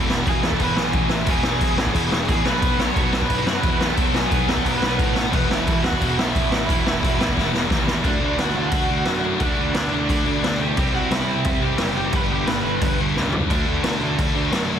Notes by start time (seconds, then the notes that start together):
Already playing: E2 B2 E3
0.10 E1, snare
0.26 E1 G#4 G#5, kick, crash
0.42 E2 B2 E3 A4 A5, snare
0.52 kick
0.59 E1 E2 B2 E3 B4 B5, kick, crash
0.77 B1 G#4 G#5, snare
0.93 A1, kick, crash
1.09 E4 E5, snare
1.26 E1 E2 B2 E3 G#4, kick, crash
1.30 G#5
1.43 E1, snare
1.61 E1, kick, crash
1.77 A1 E2 B2 E3, snare
1.86 kick
1.94 E1 E2 B2 E3, kick, crash
2.12 E1, snare
2.29 A1 G#4 G#5, kick, crash
2.44 B1 B2 F#3 B3 B4, snare
2.49 B5
2.62 B1, kick, crash
2.78 B1 C#5 C#6, snare
2.94 B1 B2 F#3 B3, kick, crash
3.12 B2 F#3 B3 A5, snare
3.21 B4 B5, kick
3.30 B1, kick, crash
3.45 F#2, snare
3.56 B4 B5
3.63 E2, kick, crash
3.80 B2 F#3 B3, snare
3.90 A4 A5
3.97 B1, kick, crash
4.13 B1 G#4, snare
4.17 G#5
4.30 B1 B2 F#3 B3, kick, crash
4.47 E2 B2 F#3 B3 A4, snare
4.51 A5
4.57 kick
4.65 B1 B4 B5, kick, crash
4.82 B1, snare
4.99 A2, kick, crash
5.16 snare
5.31 E1 E2 B2 E3 B3 B4, kick, crash
5.49 E1 E4 E5, snare
5.67 E1, kick, crash
5.83 E2 B2 E3 F#4 F#5, snare
5.92 kick
6.00 E1 E2 B2 E3, kick, crash
6.18 B1 E4 E5, snare
6.35 A1, kick, crash
6.52 E4 E5, snare
6.67 E1 E2 B2 E3, kick, crash
6.85 E1, snare
7.03 E1, kick, crash
7.18 A1 E2 B2 E3, snare
7.28 kick
7.37 E1 E2 B2 E3, kick, snare
7.52 E1, snare
7.70 D#2, kick, snare
7.88 snare
8.03 D2 D3 A3 D4, kick, crash
8.08 D5
8.21 D2 D3 A3 D4
8.25 D5
8.38 D2 D3 A3 D4 F#4 F#5, snare, crash
8.55 D2 D3 A3 D4 F#4 F#5
8.71 D2 D3 A3 D4, kick, crash
8.90 D2 D3 A3 D4
9.05 F#2 D3 A3 D4, snare, crash
9.24 D3 A3 D4
9.40 D2 D3 A3 D4 D5, kick, crash
9.57 D2 D3 A3 D4
9.74 D2 D3 A3 D4 D5, snare, crash
9.92 D2 D3 A3 D4
10.09 D2 D3 A3 D4, kick, crash
10.26 D2 D3 A3 D4
10.42 D2 D3 A3 D4 D5, snare, crash
10.59 D3 A3 D4 G4 G5
10.77 C2 C3 G3 C4, kick, crash
10.93 C2 C3 G3 C4 F#4 F#5
11.11 C2 C3 G3 C4 E4 E5, snare, crash
11.27 C2 C3 G3 C4
11.44 C2 C3 G3 C4 E4 E5, kick, crash
11.61 C2 C3 G3 C4 G4 G5
11.78 F#1 C3 G3 C4, snare, crash
11.97 C3 G3 C4 G4 G5
12.12 G1 G2 D3 G3 B4 B5, kick, crash
12.30 G1 G2 D3 G3 G4 G5
12.47 G1 G2 D3 G3 B4 B5, snare, crash
12.63 G1 G2 D3 G3
12.81 G1 G2 D3 G3, kick, crash
12.98 G1 G2 D3 G3
13.16 C#2 G2 D3 G3, snare
13.33 G2 D3 G3, floor tom
13.49 D2 D3 A3 D4, kick, crash
13.66 D2 D3 A3 D4
13.83 D2 D3 A3 D4, snare, crash
14.01 D2 D3 A3 D4
14.18 D2 D3 A3 D4, kick, crash
14.35 D2 D3 A3 D4
14.52 F#2 D3 A3 D4, snare, crash
14.68 D3 A3 D4